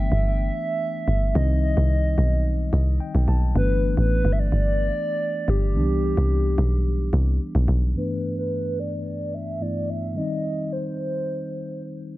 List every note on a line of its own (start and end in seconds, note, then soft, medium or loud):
0.00 0.11 G1 medium
0.00 1.30 E3 medium
0.00 1.31 A3 medium
0.00 1.32 B3 medium
0.00 1.32 D4 medium
0.00 0.25 E5 loud
0.12 0.51 G1 loud
0.26 1.38 E5 loud
1.08 1.34 G1 medium
1.34 1.75 C2 loud
1.34 3.51 D#3 medium
1.34 3.51 G3 medium
1.34 3.52 C4 medium
1.34 1.43 D4 medium
1.34 3.01 D#5 medium
1.43 3.55 D#4 medium
1.77 2.16 C2 loud
2.18 2.70 B1 loud
2.73 2.99 C2 loud
2.73 2.98 D#5 medium
3.00 3.26 G5 medium
3.15 3.27 B1 loud
3.28 3.54 B1 medium
3.28 3.53 A5 medium
3.54 3.95 G1 loud
3.54 5.71 E3 medium
3.54 5.71 A3 medium
3.54 5.72 B3 medium
3.54 5.73 D4 medium
3.54 3.95 B4 loud
3.97 4.24 A1 medium
3.97 4.34 B4 loud
4.25 4.51 G1 medium
4.32 4.41 E5 medium
4.39 5.51 D5 loud
4.52 4.91 G1 medium
5.48 5.77 G1 medium
5.48 7.41 G4 loud
5.74 6.15 C2 loud
5.74 5.81 D3 medium
5.74 7.91 G3 medium
5.74 7.92 B3 medium
5.74 7.92 D4 medium
5.80 7.94 E3 medium
6.17 6.56 C2 medium
6.58 7.11 B1 loud
7.13 7.39 C2 loud
7.55 7.68 B1 loud
7.68 7.94 B1 medium
7.94 9.57 G2 medium
7.94 9.57 E3 medium
7.94 9.58 A3 medium
7.94 9.58 B3 medium
7.94 9.58 D4 medium
7.94 8.35 B4 medium
8.38 8.81 B4 medium
8.79 9.36 D5 loud
9.34 9.63 E5 loud
9.60 10.15 G2 soft
9.60 10.16 E3 soft
9.60 10.16 A3 soft
9.60 10.16 B3 soft
9.60 10.16 E4 medium
9.60 9.91 D5 loud
9.90 10.16 E5 loud
10.14 12.18 D#3 medium
10.14 12.18 G3 medium
10.14 12.18 C4 medium
10.14 12.18 D#4 medium
10.14 10.74 D#5 loud
10.72 11.82 C5 medium